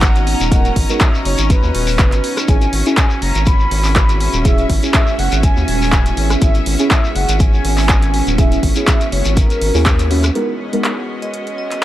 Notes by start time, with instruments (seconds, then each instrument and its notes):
Already playing: analog synth bass G#1, ambient pad B3 D#4 F#4, string section C#4 F#4 D#5 A#5, soft synth lead F#5
0.02 kick, clap, closed hi-hat, shekere
0.16 closed hi-hat, shekere
0.27 open hi-hat
0.40 analog synth bass D#1, closed hi-hat, shekere
0.52 synth stab G#3 B3 D#4 F#4 A#4, soft synth lead F#5, kick, closed hi-hat, shekere
0.65 closed hi-hat, shekere
0.76 analog synth bass G#1, kick, open hi-hat
0.89 synth stab G#3 B3 D#4 F#4 A#4, closed hi-hat, shekere
1.00 soft synth lead E5, kick, clap, closed hi-hat, shekere
1.14 shekere
1.25 analog synth bass F#1, soft synth lead C#5, open hi-hat
1.38 analog synth bass G#1, closed hi-hat, shekere
1.50 soft synth lead B4, kick, closed hi-hat, shekere
1.63 analog synth bass D#2, shekere
1.75 analog synth bass D#1, open hi-hat
1.87 shekere
1.98 analog synth bass F#1, kick, clap, closed hi-hat, shekere
2.12 analog synth bass G#1, clap, closed hi-hat, shekere
2.24 open hi-hat
2.37 cross-stick, closed hi-hat, shekere
2.48 analog synth bass G#1, ambient pad G#3 C#4 E4 G#4, synth stab C#4 E4 G#4, soft synth lead G#5, kick, closed hi-hat, shekere
2.61 closed hi-hat, shekere
2.66 string section B3
2.73 analog synth bass G#1, open hi-hat
2.79 string section E5
2.86 synth stab C#4 E4 G#4, closed hi-hat, shekere
2.97 soft synth lead G#5, kick, clap, closed hi-hat, shekere
3.10 shekere
3.22 analog synth bass F#1, soft synth lead A#5, open hi-hat
3.35 analog synth bass G#1, closed hi-hat, shekere
3.46 soft synth lead B5, kick, closed hi-hat, shekere
3.59 shekere
3.71 analog synth bass G#1, open hi-hat
3.84 clap, shekere
3.96 kick, clap, closed hi-hat, shekere
4.09 closed hi-hat, shekere
4.20 open hi-hat
4.33 analog synth bass D#1, closed hi-hat, shekere
4.45 synth stab C#4 E4 G#4, soft synth lead E5, kick, closed hi-hat, shekere
4.58 closed hi-hat, shekere
4.70 analog synth bass G#1, kick, open hi-hat
4.83 synth stab C#4 E4 G#4, closed hi-hat, shekere
4.94 soft synth lead E5, kick, clap, closed hi-hat, shekere
5.07 shekere
5.19 analog synth bass F#1, soft synth lead F#5, open hi-hat
5.32 analog synth bass G#1, closed hi-hat, shekere
5.43 soft synth lead G#5, kick, closed hi-hat, shekere
5.57 analog synth bass D#2, shekere
5.68 analog synth bass D#1, open hi-hat
5.82 shekere
5.92 kick, clap, closed hi-hat, shekere
6.06 closed hi-hat, shekere
6.17 analog synth bass G#1, open hi-hat
6.30 cross-stick, closed hi-hat, shekere
6.42 analog synth bass G#1, synth stab C#4 E4 G#4, soft synth lead E5, kick, closed hi-hat, shekere
6.55 closed hi-hat, shekere
6.66 analog synth bass G#1, open hi-hat
6.79 synth stab C#4 E4 G#4, closed hi-hat, shekere
6.91 soft synth lead E5, kick, clap, closed hi-hat, shekere
7.04 shekere
7.15 analog synth bass F#1, soft synth lead F#5, open hi-hat
7.28 analog synth bass G#1, closed hi-hat, shekere
7.39 soft synth lead G#5, kick, closed hi-hat, shekere
7.54 shekere
7.65 analog synth bass G#1, open hi-hat
7.77 clap, shekere
7.89 kick, clap, closed hi-hat, shekere
8.02 closed hi-hat, shekere
8.14 open hi-hat
8.27 analog synth bass D#1, closed hi-hat, shekere
8.38 synth stab C#4 E4 G#4, soft synth lead E5, kick, closed hi-hat, shekere
8.52 closed hi-hat, shekere
8.63 analog synth bass G#1, kick, open hi-hat
8.76 synth stab C#4 E4 G#4, closed hi-hat, shekere
8.87 soft synth lead E5, kick, clap, closed hi-hat, shekere
9.01 closed hi-hat, shekere
9.12 analog synth bass F#1, soft synth lead C#5, open hi-hat
9.25 analog synth bass G#1, closed hi-hat, shekere
9.36 soft synth lead A#4, kick, closed hi-hat, shekere
9.50 closed hi-hat, shekere
9.61 analog synth bass G#1, open hi-hat
9.74 analog synth bass D#2, synth stab C#4 E4 G#4, shekere
9.86 kick, clap, closed hi-hat, shekere
9.99 closed hi-hat, shekere
10.11 synth stab C#4 E4 F#4, open hi-hat
10.23 cross-stick, closed hi-hat, shekere
10.35 ambient pad G#2 B3 D#4 F#4 A#5, synth stab G#3 B3 D#4 F#4 A#4, string section G#3, closed hi-hat
10.50 string section C#4
10.55 string section D#5
10.62 string section F#4
10.73 synth stab G#3 B3 D#4 F#4 A#4, closed hi-hat
10.84 clap, closed hi-hat
11.22 vibraphone D#5, closed hi-hat
11.34 closed hi-hat
11.47 closed hi-hat
11.58 vibraphone D#5
11.71 vibraphone D#5, clap, closed hi-hat